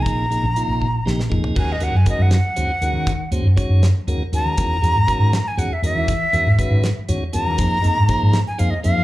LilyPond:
<<
  \new Staff \with { instrumentName = "Flute" } { \time 6/8 \key c \phrygian \tempo 4. = 80 bes''2 r4 | \key ees \dorian aes''16 ees''16 ges''16 aes''16 ees''16 ges''16 ges''4.~ | ges''8 r2 bes''8~ | bes''4.~ bes''16 gis''16 fis''16 e''16 e''8~ |
e''4. r4 bes''8~ | bes''4.~ bes''16 aes''16 f''16 ees''16 f''8 | }
  \new Staff \with { instrumentName = "Tonewheel organ" } { \time 6/8 \key c \phrygian <c f bes ees' aes'>8 <c f bes ees' aes'>8 <c f bes ees' f'>8 r8 <c f bes ees' g'>8 <c f bes ees' aes'>8 | \key ees \dorian <ees aes des' ges' bes'>8 <ees aes des' ges' bes'>8 <ees aes des' ges' bes'>8 r8 <ees aes des' ges' c''>8 <ees aes des' ges' bes'>8 | r8 <ees aes des' ges' c''>8 <ees aes des' ges' des''>8 r8 <ees aes des' ges' bes'>8 <ees aes des' ges' bes'>8 | <ees gis cis' fis' bes'>8 <ees gis cis' fis' gis'>8 <ees gis cis' fis' bes'>8 r8 <ees gis cis' fis' gis'>8 <ees gis cis' fis' bes'>8 |
r8 <ees gis cis' fis' bes'>8 <ees gis cis' fis' b'>8 r8 <ees gis cis' fis' cis''>8 <ees gis cis' fis' bes'>8 | <f bes ees' aes' c''>8 <f bes ees' aes' ees''>8 <f bes ees' aes' c''>8 r8 <f bes ees' aes' c''>8 <f bes ees' aes' c''>8 | }
  \new Staff \with { instrumentName = "Fretless electric bass" } { \clef bass \time 6/8 \key c \phrygian bes,,8. bes,,16 r16 bes,,8. bes,,8 f,16 r16 | \key ees \dorian ees,8 ees,16 ges,16 r16 ges,8 r16 ees,16 r16 ees,16 ees16~ | ees8 ees,16 ges,16 r16 ges,8 r16 ees,16 r16 ees,16 ees16 | e,8 e,16 gis,16 r16 gis,8 r16 e,16 r16 e,16 e16~ |
e8 e,16 gis,16 r16 gis,8 r16 e,16 r16 e,16 e16 | f,8 f,16 aes,16 r16 aes,8 r16 f,16 r16 f,16 f16 | }
  \new DrumStaff \with { instrumentName = "Drums" } \drummode { \time 6/8 <hh bd>8 hh8 hh8 bd8 sn16 sn16 bd16 tomfh16 | <cymc bd>8 hh8 <hh bd>8 <hh sn>8 hh8 hh8 | <hh bd>8 hh8 <hh bd>8 <hh sn>8 hh8 hh8 | <hh bd>8 hh8 <hh bd>8 <hh sn>8 hh8 hh8 |
<hh bd>8 hh8 <hh bd>8 <hh sn>8 hh8 hh8 | <hh bd>8 hh8 <hh bd>8 <hh sn>8 hh8 hh8 | }
>>